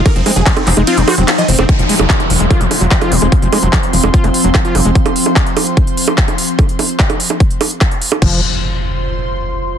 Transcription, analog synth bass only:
0.16 0.23 F1 medium
0.36 0.43 F1 medium
0.67 0.74 F1 loud
0.77 0.84 F1 medium
0.97 1.04 F1 medium
1.18 1.25 F1 medium
1.49 1.55 F1 loud
1.59 1.66 F1 medium
1.79 1.86 F1 medium
2.00 2.06 F1 medium
2.30 2.37 F1 loud
2.40 2.47 F1 medium
2.61 2.68 F1 medium
2.81 2.88 F1 medium
3.12 3.19 F1 loud
3.22 3.29 F1 medium
3.42 3.49 F1 medium
3.63 3.70 F1 medium
3.93 4.00 F1 medium
4.04 4.10 F1 medium
4.24 4.31 F1 medium
4.44 4.51 F1 medium
4.75 4.82 F1 loud
4.85 4.92 F1 medium
8.22 8.41 F1 loud

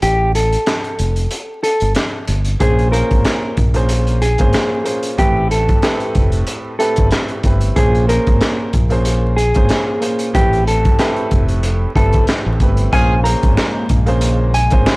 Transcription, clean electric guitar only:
0.03 0.32 G4 loud
0.35 1.60 A4 medium
1.63 1.93 A4 medium
2.61 2.90 G#4 loud
2.92 4.17 A#4 medium
4.22 5.15 G#4 medium
5.19 5.48 G4 loud
5.51 6.76 A4 medium
6.79 7.08 A4 medium
7.76 8.05 G#4 medium
8.09 9.34 A#4 medium
9.37 10.30 G#4 medium
10.35 10.64 G4 loud
10.68 11.92 A4 medium
11.96 12.25 A4 medium
12.93 13.22 G#5 loud
13.24 14.50 A#5 medium
14.54 14.97 G#5 medium

